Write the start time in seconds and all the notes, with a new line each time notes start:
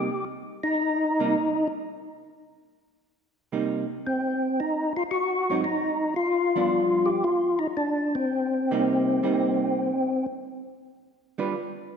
Already playing: G4
0.63 D#4
1.20 C3 G3 A#3 D#4
3.52 C3 G3 A#3 D#4
4.07 C4
4.60 D#4
4.97 F4
5.11 F#4
5.50 G#2 F#3 C4 D#4
5.64 D#4
6.16 F4
6.56 G2 F3 B3 D4
7.06 G4
7.24 F4
7.59 D#4
7.77 D4
8.15 C4
8.71 C3 G3 A#3 D#4
9.23 C3 G3 A#3 D#4
11.38 G3 D4 F4 B4